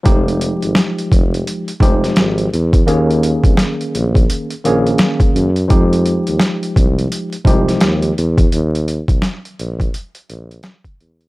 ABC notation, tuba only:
X:1
M:4/4
L:1/16
Q:"Swing 16ths" 1/4=85
K:Fm
V:1 name="Tuba" clef=bass
F,,,3 A,,, z2 F,,,2 z2 F,,,2 A,,,2 =E,,2 | E,,3 C,, z2 B,,,2 z2 B,,,2 z2 _G,,2 | F,,3 E,, z2 C,,2 z2 C,,2 E,,2 =E,,2 | E,,3 C,, z2 B,,,2 z2 B,,,2 z2 =E,,2 |]